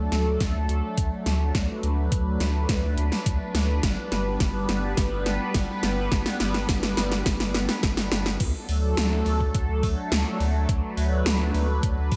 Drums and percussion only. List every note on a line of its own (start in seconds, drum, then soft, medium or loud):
0.12 snare soft
0.12 closed hi-hat medium
0.40 kick loud
0.40 snare medium
0.40 closed hi-hat loud
0.69 closed hi-hat medium
0.97 kick loud
0.97 closed hi-hat loud
1.26 snare medium
1.26 closed hi-hat medium
1.55 kick loud
1.55 snare medium
1.55 closed hi-hat medium
1.83 closed hi-hat medium
2.12 kick loud
2.12 closed hi-hat loud
2.40 snare medium
2.40 closed hi-hat medium
2.69 kick loud
2.69 snare medium
2.69 closed hi-hat loud
2.98 closed hi-hat medium
3.12 snare medium
3.26 kick loud
3.26 closed hi-hat loud
3.55 snare medium
3.55 closed hi-hat medium
3.83 kick loud
3.83 snare medium
3.83 closed hi-hat medium
4.12 snare medium
4.12 closed hi-hat medium
4.40 kick loud
4.40 snare medium
4.40 closed hi-hat loud
4.69 snare medium
4.69 closed hi-hat medium
4.97 kick loud
4.97 snare medium
4.97 closed hi-hat loud
5.26 snare medium
5.26 closed hi-hat medium
5.54 kick loud
5.54 snare medium
5.54 closed hi-hat loud
5.83 snare medium
5.83 closed hi-hat medium
6.12 kick loud
6.12 snare medium
6.12 closed hi-hat medium
6.26 snare medium
6.40 snare medium
6.40 closed hi-hat medium
6.54 snare medium
6.69 kick loud
6.69 snare loud
6.69 closed hi-hat medium
6.83 snare medium
6.97 snare loud
6.97 closed hi-hat medium
7.12 snare medium
7.26 kick loud
7.26 snare loud
7.26 closed hi-hat loud
7.40 snare medium
7.54 snare loud
7.54 closed hi-hat medium
7.69 snare medium
7.83 kick loud
7.83 snare loud
7.83 closed hi-hat medium
7.97 snare medium
8.12 snare loud
8.12 closed hi-hat medium
8.26 snare loud
8.40 kick loud
8.40 closed hi-hat loud
8.40 crash loud
8.69 open hi-hat medium
8.97 snare loud
8.97 closed hi-hat loud
9.26 open hi-hat medium
9.40 kick medium
9.55 kick loud
9.55 closed hi-hat loud
9.83 kick loud
9.83 open hi-hat medium
10.12 snare loud
10.12 closed hi-hat loud
10.40 open hi-hat medium
10.69 kick loud
10.69 closed hi-hat loud
10.97 open hi-hat medium
11.26 snare loud
11.26 closed hi-hat loud
11.54 open hi-hat medium
11.83 kick loud
11.83 closed hi-hat loud
12.12 kick loud
12.12 open hi-hat medium